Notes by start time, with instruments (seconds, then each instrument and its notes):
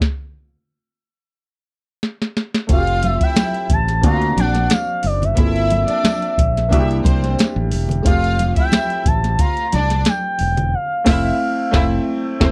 0.01 kick, snare
2.03 snare
2.22 snare
2.37 snare
2.54 snare
2.67 fingered electric bass F1, grand piano A3 C4 F4, string section F5, kick, closed hi-hat, muted conga
2.71 string section F4, grand piano F#4, analog synth lead F5
2.78 grand piano G4
2.87 closed hi-hat
3.03 closed hi-hat, muted conga, high conga
3.07 analog synth lead E5
3.21 string section E4 E5, analog synth lead G5, muted fingered electric bass stroke, kick, closed hi-hat
3.36 snare, closed hi-hat, tambourine, muted conga, high conga
3.54 closed hi-hat
3.69 fingered electric bass A1, analog synth lead A5, kick, closed hi-hat, muted conga, low conga
3.88 snare, closed hi-hat
4.01 fingered electric bass D2, grand piano A#3 C4 D4, string section F4 F5, kick, closed hi-hat, muted conga, low conga
4.05 grand piano F#4, analog synth lead A#5
4.22 closed hi-hat
4.37 fingered electric bass A#1, string section D4 D5, analog synth lead F#5, closed hi-hat, muted conga, high conga
4.55 snare, closed hi-hat
4.70 analog synth lead F5, snare, closed hi-hat, tambourine, muted conga, high conga
5.03 fingered electric bass F#1, analog synth lead D5, open hi-hat, high conga
5.22 analog synth lead E5, closed hi-hat, low conga
5.35 fingered electric bass G1, grand piano A#3 C4 F4, string section E4 E5, kick, closed hi-hat, muted conga
5.40 grand piano G#4
5.47 grand piano A4
5.56 closed hi-hat
5.70 closed hi-hat, muted conga, high conga
5.87 string section D4 D5, muted fingered electric bass stroke, closed hi-hat
6.04 snare, closed hi-hat, tambourine, muted conga, high conga
6.22 closed hi-hat
6.38 fingered electric bass A#1, kick, closed hi-hat, muted conga, low conga
6.57 snare, closed hi-hat
6.69 fingered electric bass C2, grand piano A#3 D4 E4, string section E4 E5, kick, muted conga, low conga
6.73 grand piano F#4, closed hi-hat
6.80 grand piano G4
6.91 closed hi-hat
7.03 fingered electric bass C2, string section C4 C5, kick, closed hi-hat, muted conga, high conga
7.24 snare, closed hi-hat
7.39 snare, closed hi-hat, tambourine, high conga
7.56 fingered electric bass A1
7.71 fingered electric bass E1, open hi-hat, muted conga, high conga
7.89 closed hi-hat, low conga
8.03 fingered electric bass F1, grand piano G#3 C4 F4, string section F4 F5, analog synth lead F5, kick, closed hi-hat, muted conga
8.08 grand piano A3 G4
8.24 closed hi-hat
8.39 closed hi-hat, muted conga, high conga
8.56 string section E4 E5, analog synth lead G5, muted fingered electric bass stroke, kick, closed hi-hat
8.72 snare, closed hi-hat, tambourine, muted conga, high conga
8.90 closed hi-hat
9.05 fingered electric bass A1, analog synth lead A5, kick, closed hi-hat, muted conga, low conga
9.24 snare, closed hi-hat
9.39 string section F4 F5, analog synth lead A#5, kick, closed hi-hat, low conga
9.57 closed hi-hat
9.72 fingered electric bass C2, string section D4 D5, analog synth lead A5, closed hi-hat, muted conga, high conga
9.90 snare, closed hi-hat
10.05 analog synth lead G5, snare, closed hi-hat, tambourine, high conga
10.39 fingered electric bass E1, open hi-hat, high conga
10.57 closed hi-hat, low conga
10.74 analog synth lead F5
11.04 fingered electric bass F1, grand piano A3 C4 E4, analog synth lead F5, kick, snare, crash
11.08 string section E4 E5
11.71 fingered electric bass F1, grand piano A3 C4 E4, string section E4 E5, kick, snare
12.40 fingered electric bass F1, grand piano A3 C4 E4, string section C4 C5, kick, snare